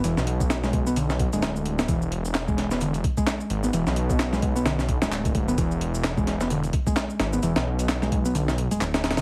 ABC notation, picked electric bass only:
X:1
M:4/4
L:1/16
Q:"Swing 16ths" 1/4=130
K:C
V:1 name="Picked electric bass" clef=bass
E, z4 ^G,2 B, D, z2 G,4 B, | E, z4 ^G,2 B, D, z2 G,4 B, | E, z4 ^G,2 B, D, z2 G,4 B, | E, z4 ^G,2 B, D, z2 G,4 B, |
E, z4 ^G,2 B, D, z2 G, z3 D, |]